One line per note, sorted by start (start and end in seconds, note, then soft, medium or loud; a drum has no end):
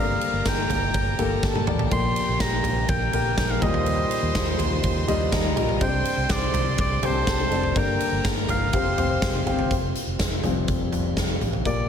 0.00 0.17 G1 loud
0.00 0.66 G2 medium
0.00 0.66 D3 medium
0.00 3.58 D3 medium
0.00 3.58 A#3 medium
0.00 0.80 A#3 medium
0.00 0.77 G4 medium
0.00 7.72 G4 medium
0.00 1.40 A#4 medium
0.00 0.77 D5 medium
0.00 0.43 F5 loud
0.00 1.40 A#5 loud
0.21 ride medium
0.33 0.43 G1 medium
0.46 0.66 G1 medium
0.46 1.40 G5 medium
0.46 kick loud
0.46 snare loud
0.46 ride medium
0.70 0.90 G1 medium
0.70 floor tom medium
0.70 ride medium
0.94 1.14 G1 loud
0.94 kick loud
0.94 ride medium
1.19 1.39 G1 medium
1.19 1.59 A#3 medium
1.19 1.59 G4 medium
1.19 1.59 A4 loud
1.19 floor tom medium
1.19 ride medium
1.42 1.63 G1 medium
1.42 1.90 A4 medium
1.42 1.91 A5 medium
1.42 kick loud
1.42 snare medium
1.55 high tom medium
1.67 1.87 A1 medium
1.67 1.87 A#3 medium
1.67 1.87 G4 medium
1.67 1.88 D5 medium
1.67 mid tom medium
1.79 floor tom medium
1.91 2.12 A#1 loud
1.91 2.61 A#2 medium
1.91 2.61 F3 medium
1.91 2.72 A#3 medium
1.91 2.72 G4 medium
1.91 2.87 G4 medium
1.91 2.72 D5 medium
1.91 2.87 G5 medium
1.91 2.43 C6 loud
1.91 kick loud
1.91 ride medium
2.16 ride medium
2.29 2.38 A#1 loud
2.40 2.91 A#5 loud
2.40 kick loud
2.40 snare loud
2.40 ride medium
2.64 2.85 A#1 loud
2.64 floor tom medium
2.64 ride medium
2.88 3.09 A#1 loud
2.88 3.61 A#4 medium
2.88 3.38 G5 medium
2.88 3.61 A#5 medium
2.88 kick loud
2.88 ride medium
3.13 3.33 A#1 medium
3.13 3.53 A#3 medium
3.13 3.53 G4 medium
3.13 3.54 A#4 medium
3.13 floor tom medium
3.13 ride medium
3.38 3.58 A#1 medium
3.38 3.52 G5 medium
3.38 kick loud
3.38 snare loud
3.38 ride medium
3.51 3.64 F5 medium
3.62 4.02 D#2 loud
3.62 4.31 A#2 medium
3.62 5.79 D#3 medium
3.62 4.42 G3 medium
3.62 5.79 D#4 medium
3.62 4.42 F4 medium
3.62 5.79 F4 medium
3.62 5.79 A#4 medium
3.62 5.29 C5 medium
3.62 4.42 D#5 medium
3.62 4.60 D#5 medium
3.62 5.29 C6 medium
3.62 kick loud
3.62 ride soft
3.74 floor tom medium
3.86 ride medium
4.11 ride medium
4.23 4.33 D#2 loud
4.35 4.55 D#2 loud
4.35 kick loud
4.35 snare loud
4.35 ride medium
4.59 4.79 D#2 medium
4.59 floor tom medium
4.59 ride medium
4.83 5.04 D#2 loud
4.83 kick loud
4.83 ride medium
5.08 5.28 D#2 loud
5.08 5.48 G3 loud
5.08 5.48 F4 medium
5.08 5.48 D#5 loud
5.08 floor tom medium
5.08 ride medium
5.32 5.57 D#2 loud
5.32 5.80 A#4 medium
5.32 5.80 A#5 medium
5.32 kick loud
5.32 snare loud
5.32 ride medium
5.56 5.77 A#1 medium
5.56 5.76 G3 medium
5.56 5.77 F4 medium
5.56 5.77 D#5 medium
5.56 floor tom medium
5.56 ride medium
5.69 floor tom medium
5.81 6.01 C2 loud
5.81 6.50 G2 medium
5.81 7.74 C4 medium
5.81 6.61 C4 medium
5.81 7.74 D4 medium
5.81 6.61 G4 medium
5.81 7.00 C5 medium
5.81 5.87 C5 medium
5.81 6.33 G5 loud
5.81 7.00 C6 medium
5.81 kick loud
5.81 ride medium
5.87 6.64 D5 medium
6.05 ride medium
6.17 6.28 C2 loud
6.29 6.80 D5 loud
6.29 kick loud
6.29 snare loud
6.29 ride medium
6.54 6.74 C2 loud
6.54 floor tom medium
6.54 ride medium
6.78 6.99 C2 loud
6.78 7.07 D5 loud
6.78 kick loud
6.78 ride medium
7.02 7.22 C2 medium
7.02 7.43 C4 medium
7.02 7.43 G4 medium
7.02 7.74 A4 medium
7.02 7.43 C5 medium
7.02 7.80 C5 loud
7.02 7.74 A5 loud
7.02 floor tom medium
7.02 ride medium
7.27 7.47 C2 medium
7.27 kick loud
7.27 snare loud
7.27 ride medium
7.51 7.71 F1 medium
7.51 7.72 C4 medium
7.51 7.72 G4 medium
7.51 7.72 D5 medium
7.51 ride soft
7.63 floor tom medium
7.75 7.96 G1 loud
7.75 8.45 G2 medium
7.75 8.45 D3 medium
7.75 8.56 A#3 medium
7.75 8.72 A#3 medium
7.75 8.72 D4 medium
7.75 9.69 G4 medium
7.75 8.56 G4 medium
7.75 8.71 A#4 medium
7.75 8.56 D5 medium
7.75 8.26 G5 medium
7.75 8.71 A#5 medium
7.75 kick loud
7.75 ride medium
8.00 ride medium
8.12 8.22 G1 loud
8.25 8.45 G1 medium
8.25 kick loud
8.25 snare loud
8.25 ride medium
8.49 8.69 G1 loud
8.49 9.43 F5 loud
8.49 floor tom medium
8.49 ride medium
8.73 8.93 F1 loud
8.73 9.42 C3 medium
8.73 8.93 C4 medium
8.73 9.70 C4 medium
8.73 9.69 F4 medium
8.73 8.93 G4 medium
8.73 9.69 C5 medium
8.73 8.93 F5 medium
8.73 9.69 C6 medium
8.73 kick loud
8.73 ride medium
8.97 9.17 F1 medium
8.97 9.38 C4 medium
8.97 9.38 G4 medium
8.97 9.38 F5 medium
8.97 floor tom medium
8.97 ride soft
9.22 9.42 F1 medium
9.22 kick loud
9.22 snare loud
9.22 ride medium
9.46 9.66 G1 loud
9.46 9.66 C4 medium
9.46 9.67 G4 medium
9.46 9.67 F5 medium
9.46 floor tom medium
9.46 ride soft
9.59 floor tom medium
9.71 9.91 F1 medium
9.71 11.64 C4 medium
9.71 11.63 F4 medium
9.71 11.64 G4 medium
9.71 kick medium
9.71 closed hi-hat medium
9.95 closed hi-hat medium
10.07 10.17 F1 medium
10.19 10.40 F1 medium
10.19 kick medium
10.19 snare loud
10.19 closed hi-hat medium
10.43 10.64 F1 loud
10.43 10.76 F3 soft
10.43 10.76 G3 soft
10.43 10.77 C4 medium
10.43 closed hi-hat medium
10.43 floor tom medium
10.68 10.88 F1 loud
10.68 kick loud
10.68 closed hi-hat medium
10.92 11.12 F1 medium
10.92 closed hi-hat medium
10.92 floor tom medium
11.17 11.37 F1 medium
11.17 kick medium
11.17 snare medium
11.17 closed hi-hat medium
11.41 11.61 A1 medium
11.41 closed hi-hat medium
11.41 floor tom soft
11.53 floor tom medium
11.65 11.85 A#1 medium
11.65 11.89 A#2 medium
11.65 11.89 F3 soft
11.65 11.89 A#3 medium
11.65 11.89 G4 medium
11.65 11.89 D5 medium
11.65 kick medium
11.65 closed hi-hat medium